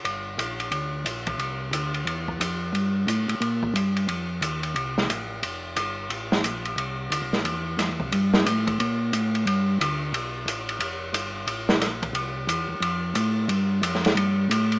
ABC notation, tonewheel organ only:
X:1
M:4/4
L:1/8
Q:"Swing" 1/4=179
K:Cmix
V:1 name="Tonewheel organ" clef=bass
G,,,2 B,,,2 D,,2 B,,,2 | C,,2 D,,2 E,,2 F,,2 | G,,2 A,, A,, B,,2 G,,2 | F,,2 _E,,2 C,,2 A,,,2 |
F,,,2 G,,,2 A,,,2 B,,,2 | C,,2 (3D,, C,, B,,, E,,2 (3F,, E,, C,, | G,,2 A,,2 B,,2 A,,2 | G,,2 D,,2 =B,,,2 A,,,2 |
F,,,2 G,,,2 A,,,2 B,,,2 | C,,2 E,, E,, F,,2 A,,2 | G,,2 F,,2 G,,2 A,,2 |]